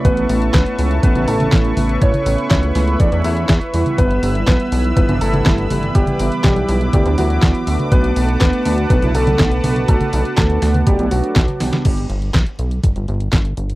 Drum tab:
CC |----------------|----------------|----------------|----------------|
HH |xxoxxxoxxxoxxxox|xxoxxxoxxxoxxxox|xxoxxxoxxxoxxxox|xxoxxxoxxxoxxxox|
CP |----x-------x---|----x-------x---|----x-------x---|----x-------x---|
SD |----o-------o---|----o-o-----o---|----o-------o---|----o-------o---|
CG |---------o-o--o-|-o-------------o|---------o-o--o-|-o-------------o|
BD |o---o---o---o---|o---o---o---o---|o---o---o---o---|o---o---o---o---|

CC |----------------|----------------|x---------------|
HH |xxoxxxoxxxoxxxox|xxoxxxoxxxoxxxox|xxxxxxxxxxxxxxxx|
CP |----x-------x---|----x-------x---|----x-------x---|
SD |----o-------o---|----o-o-----o-oo|----o-------o---|
CG |---------o-o--o-|-o-----o-----o-o|----------------|
BD |o---o---o---o---|o---o---o---o---|o---o---o---o---|